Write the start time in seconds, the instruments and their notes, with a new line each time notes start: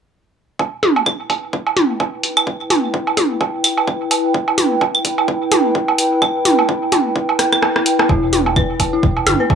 0.59 ambient pad E4, kick, low woodblock
0.72 ambient pad B4
0.83 open hi-hat, mid tom
0.96 ambient pad G5, low woodblock
1.06 kick, claves
1.30 kick, open hi-hat, low woodblock
1.53 kick
1.67 low woodblock
1.77 open hi-hat, mid tom
2.00 kick, low woodblock
2.23 open hi-hat
2.37 claves, low woodblock
2.47 kick
2.70 open hi-hat, mid tom, low woodblock
2.94 kick
3.07 low woodblock
3.17 kick, open hi-hat, mid tom
3.41 kick, low woodblock
3.64 open hi-hat, claves
3.78 low woodblock
3.88 kick
4.11 open hi-hat, low woodblock
4.34 kick
4.48 low woodblock
4.58 open hi-hat, mid tom
4.81 kick, low woodblock
4.95 claves
5.05 kick, open hi-hat
5.18 low woodblock
5.28 kick
5.52 open hi-hat, mid tom, low woodblock
5.75 kick
5.88 low woodblock
5.98 open hi-hat
6.22 kick, claves, low woodblock
6.45 open hi-hat, mid tom
6.59 low woodblock
6.69 kick
6.92 kick, open hi-hat, mid tom, low woodblock
7.16 kick
7.29 low woodblock
7.39 cross-stick, open hi-hat
7.52 cross-stick, claves
7.62 cross-stick, low woodblock
7.76 cross-stick
7.86 open hi-hat
7.99 cross-stick, low woodblock
8.09 analog synth bass E1, synth bell E4, kick, low woodblock
8.33 open hi-hat, mid tom
8.46 low woodblock
8.56 synth bell B4, kick, claves
8.80 analog synth bass E1, kick, open hi-hat, low woodblock
8.93 synth bell E4
9.03 analog synth bass E1, kick
9.17 low woodblock
9.27 analog synth bass G1, open hi-hat, mid tom, high woodblock
9.40 synth bell B4
9.50 kick, low woodblock